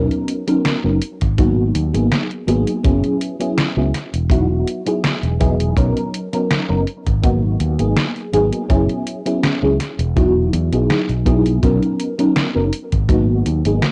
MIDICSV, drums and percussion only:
0, 0, Header, 1, 2, 480
1, 0, Start_track
1, 0, Key_signature, 5, "minor"
1, 0, Tempo, 731707
1, 1867, Time_signature, 4, 2, 24, 8
1, 9130, End_track
2, 0, Start_track
2, 0, Title_t, "Drums"
2, 73, Note_on_c, 9, 42, 35
2, 139, Note_off_c, 9, 42, 0
2, 185, Note_on_c, 9, 42, 78
2, 250, Note_off_c, 9, 42, 0
2, 313, Note_on_c, 9, 42, 55
2, 378, Note_off_c, 9, 42, 0
2, 426, Note_on_c, 9, 38, 114
2, 426, Note_on_c, 9, 42, 80
2, 492, Note_off_c, 9, 38, 0
2, 492, Note_off_c, 9, 42, 0
2, 666, Note_on_c, 9, 42, 82
2, 732, Note_off_c, 9, 42, 0
2, 794, Note_on_c, 9, 42, 53
2, 798, Note_on_c, 9, 36, 63
2, 859, Note_off_c, 9, 42, 0
2, 863, Note_off_c, 9, 36, 0
2, 906, Note_on_c, 9, 36, 120
2, 906, Note_on_c, 9, 42, 80
2, 971, Note_off_c, 9, 36, 0
2, 971, Note_off_c, 9, 42, 0
2, 1146, Note_on_c, 9, 42, 80
2, 1212, Note_off_c, 9, 42, 0
2, 1274, Note_on_c, 9, 42, 53
2, 1340, Note_off_c, 9, 42, 0
2, 1387, Note_on_c, 9, 38, 116
2, 1387, Note_on_c, 9, 42, 77
2, 1453, Note_off_c, 9, 38, 0
2, 1453, Note_off_c, 9, 42, 0
2, 1514, Note_on_c, 9, 42, 38
2, 1580, Note_off_c, 9, 42, 0
2, 1627, Note_on_c, 9, 42, 84
2, 1693, Note_off_c, 9, 42, 0
2, 1753, Note_on_c, 9, 42, 52
2, 1819, Note_off_c, 9, 42, 0
2, 1866, Note_on_c, 9, 42, 77
2, 1867, Note_on_c, 9, 36, 125
2, 1932, Note_off_c, 9, 42, 0
2, 1933, Note_off_c, 9, 36, 0
2, 1992, Note_on_c, 9, 42, 35
2, 2058, Note_off_c, 9, 42, 0
2, 2107, Note_on_c, 9, 42, 82
2, 2173, Note_off_c, 9, 42, 0
2, 2235, Note_on_c, 9, 42, 56
2, 2300, Note_off_c, 9, 42, 0
2, 2347, Note_on_c, 9, 38, 117
2, 2347, Note_on_c, 9, 42, 79
2, 2413, Note_off_c, 9, 38, 0
2, 2413, Note_off_c, 9, 42, 0
2, 2588, Note_on_c, 9, 38, 37
2, 2588, Note_on_c, 9, 42, 84
2, 2653, Note_off_c, 9, 38, 0
2, 2653, Note_off_c, 9, 42, 0
2, 2715, Note_on_c, 9, 42, 55
2, 2780, Note_off_c, 9, 42, 0
2, 2819, Note_on_c, 9, 36, 112
2, 2829, Note_on_c, 9, 42, 81
2, 2885, Note_off_c, 9, 36, 0
2, 2894, Note_off_c, 9, 42, 0
2, 3067, Note_on_c, 9, 42, 80
2, 3133, Note_off_c, 9, 42, 0
2, 3192, Note_on_c, 9, 42, 52
2, 3258, Note_off_c, 9, 42, 0
2, 3307, Note_on_c, 9, 38, 119
2, 3307, Note_on_c, 9, 42, 80
2, 3372, Note_off_c, 9, 38, 0
2, 3372, Note_off_c, 9, 42, 0
2, 3433, Note_on_c, 9, 42, 37
2, 3499, Note_off_c, 9, 42, 0
2, 3547, Note_on_c, 9, 42, 84
2, 3549, Note_on_c, 9, 36, 100
2, 3613, Note_off_c, 9, 42, 0
2, 3614, Note_off_c, 9, 36, 0
2, 3675, Note_on_c, 9, 42, 53
2, 3740, Note_off_c, 9, 42, 0
2, 3783, Note_on_c, 9, 36, 116
2, 3788, Note_on_c, 9, 42, 78
2, 3849, Note_off_c, 9, 36, 0
2, 3854, Note_off_c, 9, 42, 0
2, 3915, Note_on_c, 9, 42, 36
2, 3981, Note_off_c, 9, 42, 0
2, 4029, Note_on_c, 9, 42, 76
2, 4095, Note_off_c, 9, 42, 0
2, 4154, Note_on_c, 9, 42, 55
2, 4220, Note_off_c, 9, 42, 0
2, 4268, Note_on_c, 9, 38, 127
2, 4268, Note_on_c, 9, 42, 80
2, 4334, Note_off_c, 9, 38, 0
2, 4334, Note_off_c, 9, 42, 0
2, 4507, Note_on_c, 9, 42, 83
2, 4573, Note_off_c, 9, 42, 0
2, 4634, Note_on_c, 9, 36, 64
2, 4634, Note_on_c, 9, 42, 54
2, 4700, Note_off_c, 9, 36, 0
2, 4700, Note_off_c, 9, 42, 0
2, 4746, Note_on_c, 9, 42, 80
2, 4747, Note_on_c, 9, 36, 127
2, 4812, Note_off_c, 9, 42, 0
2, 4813, Note_off_c, 9, 36, 0
2, 4987, Note_on_c, 9, 42, 81
2, 5053, Note_off_c, 9, 42, 0
2, 5113, Note_on_c, 9, 42, 53
2, 5178, Note_off_c, 9, 42, 0
2, 5227, Note_on_c, 9, 38, 123
2, 5227, Note_on_c, 9, 42, 81
2, 5292, Note_off_c, 9, 38, 0
2, 5292, Note_off_c, 9, 42, 0
2, 5354, Note_on_c, 9, 42, 36
2, 5420, Note_off_c, 9, 42, 0
2, 5469, Note_on_c, 9, 42, 82
2, 5535, Note_off_c, 9, 42, 0
2, 5594, Note_on_c, 9, 42, 53
2, 5660, Note_off_c, 9, 42, 0
2, 5707, Note_on_c, 9, 36, 111
2, 5708, Note_on_c, 9, 42, 74
2, 5773, Note_off_c, 9, 36, 0
2, 5774, Note_off_c, 9, 42, 0
2, 5835, Note_on_c, 9, 42, 34
2, 5901, Note_off_c, 9, 42, 0
2, 5949, Note_on_c, 9, 42, 74
2, 6014, Note_off_c, 9, 42, 0
2, 6075, Note_on_c, 9, 42, 51
2, 6141, Note_off_c, 9, 42, 0
2, 6189, Note_on_c, 9, 38, 123
2, 6189, Note_on_c, 9, 42, 77
2, 6254, Note_off_c, 9, 38, 0
2, 6254, Note_off_c, 9, 42, 0
2, 6429, Note_on_c, 9, 38, 38
2, 6429, Note_on_c, 9, 42, 77
2, 6495, Note_off_c, 9, 38, 0
2, 6495, Note_off_c, 9, 42, 0
2, 6555, Note_on_c, 9, 42, 51
2, 6621, Note_off_c, 9, 42, 0
2, 6669, Note_on_c, 9, 42, 77
2, 6670, Note_on_c, 9, 36, 122
2, 6735, Note_off_c, 9, 36, 0
2, 6735, Note_off_c, 9, 42, 0
2, 6909, Note_on_c, 9, 42, 77
2, 6975, Note_off_c, 9, 42, 0
2, 7035, Note_on_c, 9, 42, 51
2, 7101, Note_off_c, 9, 42, 0
2, 7150, Note_on_c, 9, 38, 116
2, 7150, Note_on_c, 9, 42, 76
2, 7215, Note_off_c, 9, 38, 0
2, 7215, Note_off_c, 9, 42, 0
2, 7276, Note_on_c, 9, 42, 35
2, 7341, Note_off_c, 9, 42, 0
2, 7387, Note_on_c, 9, 36, 108
2, 7388, Note_on_c, 9, 42, 81
2, 7452, Note_off_c, 9, 36, 0
2, 7454, Note_off_c, 9, 42, 0
2, 7515, Note_on_c, 9, 42, 50
2, 7581, Note_off_c, 9, 42, 0
2, 7627, Note_on_c, 9, 36, 117
2, 7629, Note_on_c, 9, 42, 73
2, 7693, Note_off_c, 9, 36, 0
2, 7695, Note_off_c, 9, 42, 0
2, 7756, Note_on_c, 9, 42, 34
2, 7822, Note_off_c, 9, 42, 0
2, 7869, Note_on_c, 9, 42, 75
2, 7934, Note_off_c, 9, 42, 0
2, 7996, Note_on_c, 9, 42, 51
2, 8062, Note_off_c, 9, 42, 0
2, 8108, Note_on_c, 9, 38, 118
2, 8108, Note_on_c, 9, 42, 75
2, 8174, Note_off_c, 9, 38, 0
2, 8174, Note_off_c, 9, 42, 0
2, 8348, Note_on_c, 9, 42, 75
2, 8414, Note_off_c, 9, 42, 0
2, 8476, Note_on_c, 9, 42, 51
2, 8477, Note_on_c, 9, 36, 62
2, 8541, Note_off_c, 9, 42, 0
2, 8543, Note_off_c, 9, 36, 0
2, 8584, Note_on_c, 9, 36, 117
2, 8590, Note_on_c, 9, 42, 75
2, 8650, Note_off_c, 9, 36, 0
2, 8655, Note_off_c, 9, 42, 0
2, 8828, Note_on_c, 9, 42, 74
2, 8893, Note_off_c, 9, 42, 0
2, 8954, Note_on_c, 9, 42, 50
2, 9020, Note_off_c, 9, 42, 0
2, 9066, Note_on_c, 9, 38, 117
2, 9066, Note_on_c, 9, 42, 74
2, 9130, Note_off_c, 9, 38, 0
2, 9130, Note_off_c, 9, 42, 0
2, 9130, End_track
0, 0, End_of_file